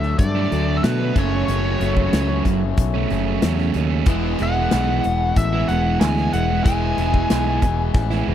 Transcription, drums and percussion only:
0.03 snare soft
0.19 kick loud
0.19 closed hi-hat medium
0.52 closed hi-hat medium
0.84 snare loud
0.84 closed hi-hat medium
1.16 kick loud
1.16 closed hi-hat medium
1.48 closed hi-hat loud
1.81 closed hi-hat medium
1.97 kick medium
2.13 snare loud
2.13 closed hi-hat medium
2.45 kick medium
2.45 closed hi-hat medium
2.77 kick loud
2.77 closed hi-hat loud
3.10 closed hi-hat medium
3.42 snare loud
3.42 closed hi-hat medium
3.58 snare soft
3.74 closed hi-hat medium
4.06 kick loud
4.06 closed hi-hat loud
4.39 closed hi-hat medium
4.71 snare loud
4.71 clap medium
4.71 closed hi-hat medium
5.04 closed hi-hat medium
5.36 kick loud
5.36 closed hi-hat medium
5.69 closed hi-hat medium
6.01 snare loud
6.01 clap medium
6.01 closed hi-hat medium
6.17 snare soft
6.33 closed hi-hat medium
6.66 kick loud
6.66 closed hi-hat medium
6.98 closed hi-hat medium
7.14 kick medium
7.30 snare loud
7.30 clap medium
7.30 closed hi-hat loud
7.62 kick medium
7.62 closed hi-hat medium
7.94 kick loud
7.94 snare medium
8.10 snare medium

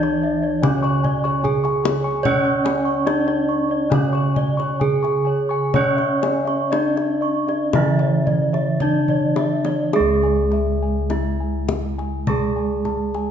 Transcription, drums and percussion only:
0.03 kendang slap soft
0.63 kendang high medium
0.63 kendang low medium
0.84 kendang slap soft
1.04 kendang low medium
1.25 kendang slap soft
1.45 kendang low medium
1.65 kendang slap soft
1.85 kendang high medium
2.25 kendang low medium
2.66 kendang high medium
3.07 kendang high medium
3.28 kendang slap soft
3.92 kendang high medium
3.92 kendang low medium
4.15 kendang slap soft
4.36 kendang low medium
4.60 kendang slap soft
4.81 kendang low medium
5.04 kendang slap soft
5.74 kendang low medium
5.98 kendang slap soft
6.23 kendang high medium
6.47 kendang slap soft
6.73 kendang high medium
6.97 kendang slap soft
7.48 kendang slap soft
7.73 kendang high medium
7.73 kendang low medium
7.99 kendang slap soft
8.27 kendang low soft
8.54 kendang slap soft
8.80 kendang low medium
9.08 kendang low soft
9.36 kendang high medium
9.65 kendang high soft
9.93 kendang high soft
10.23 kendang slap soft
10.51 kendang slap soft
11.10 kendang slap soft
11.10 kendang high soft
11.69 kendang high soft
11.69 kendang low medium
11.99 kendang slap soft
12.27 kendang low medium
12.85 kendang slap soft
12.85 kendang low soft
13.14 kendang slap soft

